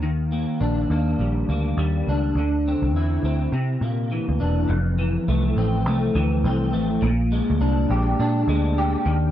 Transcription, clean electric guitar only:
X:1
M:4/4
L:1/8
Q:"Swing 16ths" 1/4=103
K:F
V:1 name="Clean electric guitar"
_E, B, D B, G, B, G, D | D, C E C C, B, E, D | F,, E, A, C A, E, C A, | B,, _A, D G D A, G _E, |]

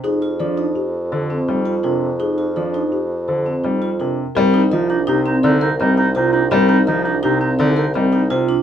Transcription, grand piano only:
X:1
M:6/4
L:1/8
Q:1/4=167
K:Fdor
V:1 name="Grand piano" clef=bass
z2 F, z3 D, z G, z C, z | z2 F, z3 D, z G, z C, z | [K:Cm] G, z F, z C, z D, z G, z C, z | G, z F, z C, z D, z G, z C, z |]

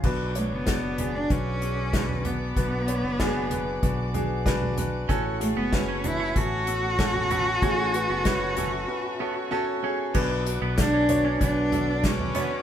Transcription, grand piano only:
X:1
M:4/4
L:1/8
Q:1/4=95
K:Bdor
V:1 name="Grand piano"
[DFB] [DFc] [DFd] [DFG] [DFB] [DFG] [DFB] [DFB] | [DFB] [DFc] [DFG] [DFB] [DFB] [DFG] [DFB] [DFB] | [CFA] [CFG] [CFB] [CFB] [CFA] [CFA] [CFA] [CFA] | [CFG] [CFB] [CFB] [CFA] [CFB] [CFA] [CFA] [CFG] |
[DFB] [DFB] [DFd] [DFc] [DFB] [DFA] [DFB] [DFc] |]
V:2 name="Grand piano" clef=bass
B,,3 z4 z | B,,3 z4 z | A,,3 z4 z | A,,3 z4 z |
B,,3 z4 z |]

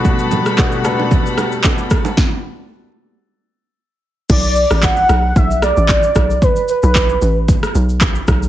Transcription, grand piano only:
X:1
M:4/4
L:1/8
Q:"Swing 16ths" 1/4=113
K:D
V:1 name="Grand piano"
[B,,A,B,DF] z [B,,A,B,DF] [B,,A,B,DA]3 z2 | z8 | z8 | z8 |]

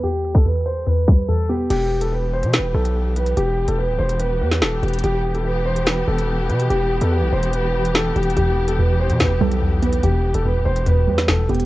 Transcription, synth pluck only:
X:1
M:4/4
L:1/8
Q:1/4=144
K:Em
V:1 name="Synth pluck" clef=bass
[E,,G,B,]2 E,,2 E,, G, E,, B, | z8 | z8 | z8 |
z8 | E,,2 E,,2 E,, G, E,, B, | E,,2 E,,2 E,, G, E,, B, |]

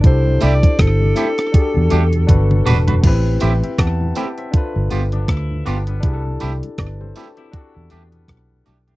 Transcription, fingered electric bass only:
X:1
M:4/4
L:1/16
Q:"Swing 16ths" 1/4=80
K:Ador
V:1 name="Fingered electric bass" clef=bass
C,,2 C,, z G,,,2 z3 E,, E,,2 G,,,2 E,,,2 | A,,,2 A,,, z E,,2 z3 G,,, G,,,2 D,,2 G,,,2 | C,,2 C,, z G,,,2 z3 E,, E,,2 B,,,2 B,,,2 |]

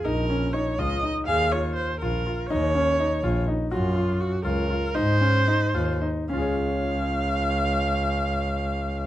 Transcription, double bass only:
X:1
M:5/8
L:1/8
Q:1/4=121
K:Db
V:1 name="Double bass" clef=bass
B,,,3 D,, z | E,,3 B,,, z | E,,3 B,,, z | G,,3 D,, z |
A,,3 E,, z | D,,4- D,,- | D,,4- D,, |]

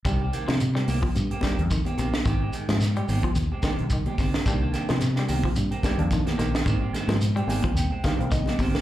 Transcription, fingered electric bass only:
X:1
M:4/4
L:1/16
Q:"Swing 16ths" 1/4=109
K:Cm
V:1 name="Fingered electric bass" clef=bass
C,,2 z C,3 C,, z G,, z2 F,,2 z B,,, z | A,,,2 z A,,3 A,,, z E,, z2 C,,2 z G,,, z | C,,2 z C,3 C,, z G,, z2 F,,2 z B,,, z | A,,,2 z A,,3 A,,, z E,, z2 C,,2 z G,,, z |]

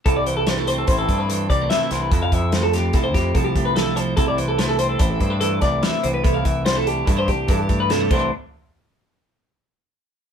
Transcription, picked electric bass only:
X:1
M:5/4
L:1/8
Q:1/4=145
K:C
V:1 name="Picked electric bass" clef=bass
C,,4 A,,, G,,2 C,, z C,, | F,, F,,3 C,, F,, C,, C,,3 | C,,4 A,,, G,,2 C,, z C,, | C,, C,,3 G,, C,, G,, G,,2 C,, |
z8 z2 |]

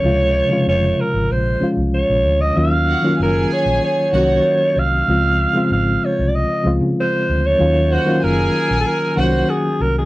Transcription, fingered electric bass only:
X:1
M:4/4
L:1/16
Q:1/4=95
K:Db
V:1 name="Fingered electric bass" clef=bass
D,,3 z F,,,2 z A,,, B,,,2 z C,,2 B,,, =D,,2 | E,,3 z G,,,2 z B,,, z2 C,,2 z2 C,,2 | D,,3 z A,,,2 z C,,2 z D,, D, z2 =D,,2 | E,,3 z G,,,2 z B,,, z2 C,,2 z2 C,,2 |]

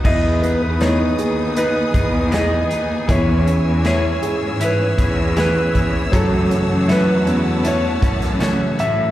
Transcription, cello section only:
X:1
M:4/4
L:1/16
Q:1/4=79
K:E
V:1 name="Cello section" clef=bass
E,,3 E,,3 D,,4 E,,4 D,,2 | E,,3 E,,3 G,,4 E,,4 E,,2 | F,,3 F,,3 E,,4 F,,4 A,,2 |]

